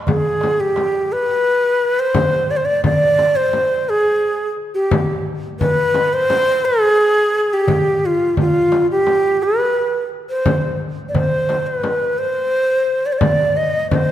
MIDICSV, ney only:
0, 0, Header, 1, 2, 480
1, 0, Start_track
1, 0, Tempo, 692121
1, 43, Time_signature, 4, 2, 24, 8
1, 9790, End_track
2, 0, Start_track
2, 0, Title_t, "Ney"
2, 0, Program_c, 0, 77
2, 52, Note_on_c, 0, 68, 77
2, 418, Note_on_c, 0, 67, 80
2, 429, Note_off_c, 0, 68, 0
2, 779, Note_on_c, 0, 71, 91
2, 790, Note_off_c, 0, 67, 0
2, 1384, Note_on_c, 0, 72, 101
2, 1394, Note_off_c, 0, 71, 0
2, 1739, Note_on_c, 0, 74, 94
2, 1750, Note_off_c, 0, 72, 0
2, 1780, Note_on_c, 0, 72, 80
2, 1790, Note_off_c, 0, 74, 0
2, 1839, Note_on_c, 0, 74, 95
2, 1849, Note_off_c, 0, 72, 0
2, 1972, Note_off_c, 0, 74, 0
2, 1977, Note_on_c, 0, 74, 94
2, 2329, Note_on_c, 0, 72, 89
2, 2340, Note_off_c, 0, 74, 0
2, 2700, Note_on_c, 0, 68, 90
2, 2710, Note_off_c, 0, 72, 0
2, 3103, Note_off_c, 0, 68, 0
2, 3290, Note_on_c, 0, 67, 67
2, 3622, Note_off_c, 0, 67, 0
2, 3883, Note_on_c, 0, 71, 96
2, 4254, Note_on_c, 0, 72, 110
2, 4265, Note_off_c, 0, 71, 0
2, 4612, Note_on_c, 0, 68, 101
2, 4623, Note_off_c, 0, 72, 0
2, 5225, Note_on_c, 0, 67, 87
2, 5236, Note_off_c, 0, 68, 0
2, 5588, Note_on_c, 0, 65, 80
2, 5598, Note_off_c, 0, 67, 0
2, 5816, Note_off_c, 0, 65, 0
2, 5829, Note_on_c, 0, 65, 87
2, 6152, Note_off_c, 0, 65, 0
2, 6181, Note_on_c, 0, 67, 85
2, 6539, Note_on_c, 0, 71, 90
2, 6550, Note_off_c, 0, 67, 0
2, 6944, Note_off_c, 0, 71, 0
2, 7141, Note_on_c, 0, 72, 79
2, 7468, Note_off_c, 0, 72, 0
2, 7689, Note_on_c, 0, 74, 55
2, 7731, Note_on_c, 0, 72, 78
2, 7741, Note_off_c, 0, 74, 0
2, 8091, Note_off_c, 0, 72, 0
2, 8091, Note_on_c, 0, 72, 81
2, 8167, Note_off_c, 0, 72, 0
2, 8167, Note_on_c, 0, 71, 81
2, 8451, Note_on_c, 0, 72, 91
2, 8461, Note_off_c, 0, 71, 0
2, 9057, Note_on_c, 0, 74, 86
2, 9067, Note_off_c, 0, 72, 0
2, 9104, Note_on_c, 0, 72, 71
2, 9114, Note_off_c, 0, 74, 0
2, 9146, Note_on_c, 0, 74, 90
2, 9156, Note_off_c, 0, 72, 0
2, 9410, Note_on_c, 0, 75, 86
2, 9420, Note_off_c, 0, 74, 0
2, 9640, Note_off_c, 0, 75, 0
2, 9644, Note_on_c, 0, 72, 82
2, 9790, Note_off_c, 0, 72, 0
2, 9790, End_track
0, 0, End_of_file